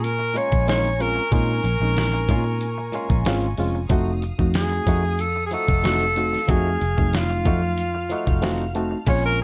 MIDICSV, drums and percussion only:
0, 0, Header, 1, 2, 480
1, 0, Start_track
1, 0, Tempo, 646552
1, 982, Time_signature, 4, 2, 24, 8
1, 7005, End_track
2, 0, Start_track
2, 0, Title_t, "Drums"
2, 30, Note_on_c, 9, 42, 86
2, 104, Note_off_c, 9, 42, 0
2, 269, Note_on_c, 9, 42, 63
2, 343, Note_off_c, 9, 42, 0
2, 387, Note_on_c, 9, 36, 87
2, 461, Note_off_c, 9, 36, 0
2, 506, Note_on_c, 9, 42, 79
2, 515, Note_on_c, 9, 38, 103
2, 580, Note_off_c, 9, 42, 0
2, 590, Note_off_c, 9, 38, 0
2, 745, Note_on_c, 9, 42, 68
2, 819, Note_off_c, 9, 42, 0
2, 980, Note_on_c, 9, 36, 105
2, 981, Note_on_c, 9, 42, 76
2, 1054, Note_off_c, 9, 36, 0
2, 1056, Note_off_c, 9, 42, 0
2, 1222, Note_on_c, 9, 42, 56
2, 1296, Note_off_c, 9, 42, 0
2, 1460, Note_on_c, 9, 42, 74
2, 1470, Note_on_c, 9, 38, 107
2, 1535, Note_off_c, 9, 42, 0
2, 1544, Note_off_c, 9, 38, 0
2, 1698, Note_on_c, 9, 36, 80
2, 1701, Note_on_c, 9, 42, 63
2, 1772, Note_off_c, 9, 36, 0
2, 1775, Note_off_c, 9, 42, 0
2, 1936, Note_on_c, 9, 42, 77
2, 2010, Note_off_c, 9, 42, 0
2, 2177, Note_on_c, 9, 42, 55
2, 2251, Note_off_c, 9, 42, 0
2, 2301, Note_on_c, 9, 36, 87
2, 2375, Note_off_c, 9, 36, 0
2, 2413, Note_on_c, 9, 42, 75
2, 2423, Note_on_c, 9, 38, 111
2, 2487, Note_off_c, 9, 42, 0
2, 2497, Note_off_c, 9, 38, 0
2, 2654, Note_on_c, 9, 46, 83
2, 2728, Note_off_c, 9, 46, 0
2, 2891, Note_on_c, 9, 42, 76
2, 2894, Note_on_c, 9, 36, 109
2, 2965, Note_off_c, 9, 42, 0
2, 2968, Note_off_c, 9, 36, 0
2, 3134, Note_on_c, 9, 42, 60
2, 3208, Note_off_c, 9, 42, 0
2, 3259, Note_on_c, 9, 36, 72
2, 3333, Note_off_c, 9, 36, 0
2, 3370, Note_on_c, 9, 42, 89
2, 3379, Note_on_c, 9, 38, 109
2, 3444, Note_off_c, 9, 42, 0
2, 3453, Note_off_c, 9, 38, 0
2, 3614, Note_on_c, 9, 36, 80
2, 3616, Note_on_c, 9, 42, 69
2, 3688, Note_off_c, 9, 36, 0
2, 3690, Note_off_c, 9, 42, 0
2, 3853, Note_on_c, 9, 42, 85
2, 3927, Note_off_c, 9, 42, 0
2, 4090, Note_on_c, 9, 42, 58
2, 4165, Note_off_c, 9, 42, 0
2, 4220, Note_on_c, 9, 36, 88
2, 4294, Note_off_c, 9, 36, 0
2, 4335, Note_on_c, 9, 42, 77
2, 4344, Note_on_c, 9, 38, 102
2, 4409, Note_off_c, 9, 42, 0
2, 4419, Note_off_c, 9, 38, 0
2, 4575, Note_on_c, 9, 42, 65
2, 4649, Note_off_c, 9, 42, 0
2, 4710, Note_on_c, 9, 38, 37
2, 4785, Note_off_c, 9, 38, 0
2, 4815, Note_on_c, 9, 42, 79
2, 4816, Note_on_c, 9, 36, 109
2, 4889, Note_off_c, 9, 42, 0
2, 4890, Note_off_c, 9, 36, 0
2, 5058, Note_on_c, 9, 42, 58
2, 5132, Note_off_c, 9, 42, 0
2, 5182, Note_on_c, 9, 36, 76
2, 5256, Note_off_c, 9, 36, 0
2, 5296, Note_on_c, 9, 42, 72
2, 5305, Note_on_c, 9, 38, 106
2, 5370, Note_off_c, 9, 42, 0
2, 5380, Note_off_c, 9, 38, 0
2, 5535, Note_on_c, 9, 36, 76
2, 5535, Note_on_c, 9, 42, 60
2, 5609, Note_off_c, 9, 36, 0
2, 5609, Note_off_c, 9, 42, 0
2, 5773, Note_on_c, 9, 42, 78
2, 5847, Note_off_c, 9, 42, 0
2, 6014, Note_on_c, 9, 42, 58
2, 6088, Note_off_c, 9, 42, 0
2, 6141, Note_on_c, 9, 36, 94
2, 6215, Note_off_c, 9, 36, 0
2, 6253, Note_on_c, 9, 42, 75
2, 6263, Note_on_c, 9, 38, 110
2, 6328, Note_off_c, 9, 42, 0
2, 6337, Note_off_c, 9, 38, 0
2, 6495, Note_on_c, 9, 42, 61
2, 6569, Note_off_c, 9, 42, 0
2, 6730, Note_on_c, 9, 42, 80
2, 6730, Note_on_c, 9, 49, 75
2, 6734, Note_on_c, 9, 36, 111
2, 6804, Note_off_c, 9, 42, 0
2, 6804, Note_off_c, 9, 49, 0
2, 6808, Note_off_c, 9, 36, 0
2, 7005, End_track
0, 0, End_of_file